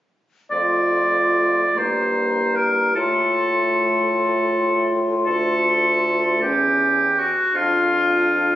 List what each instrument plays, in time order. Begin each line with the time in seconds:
0.51 bassoon F2, french horn A3, clarinet F4, oboe D5, flute C6
1.76 bassoon G2, french horn A#3, clarinet E4, oboe C5, flute A#5
2.56 oboe A#4
2.95 bassoon A2, french horn A3, clarinet F4, oboe A4, flute C6
5.25 bassoon D2, oboe A4
6.42 bassoon E2, french horn C#4, clarinet C#4, oboe G4, flute G5
7.19 oboe F#4
7.54 bassoon F2, french horn D4, clarinet F4, oboe F4, flute A5